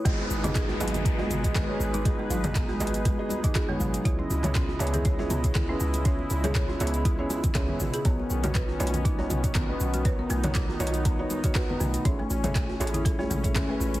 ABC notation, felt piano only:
X:1
M:4/4
L:1/16
Q:"Swing 16ths" 1/4=120
K:G#phr
V:1 name="Felt piano"
[B,FGd] z2 [B,FGd]2 z [B,FGd]3 [B,FGd]2 [B,FGd]2 [B,FGc]3 | [B,FGd] z2 [B,FGd]2 z [B,FGd]3 [B,FGd]2 [B,FGd]2 [B,FGc]3 | [B,EGc] z2 [B,EGc]2 z [B,EGc]3 [B,EGc]2 [B,EGc]2 [B,EGB]3 | [B,EGc] z2 [B,EGc]2 z [B,EGc]3 [B,EGc]2 z [B,EGc]4 |
[B,DFc] z2 [B,DFc]2 z [B,DFc]3 [B,DFc]2 [B,DFc]2 [B,DFB]3 | [B,DFc] z2 [B,DFc]2 z [B,DFc]3 [B,DFc]2 [B,DFc]2 [B,DFB]3 | [A,EGc] z2 [A,EGc]2 z [A,EGc]3 [A,EGc]2 [A,EGc]2 [A,EGB]3 |]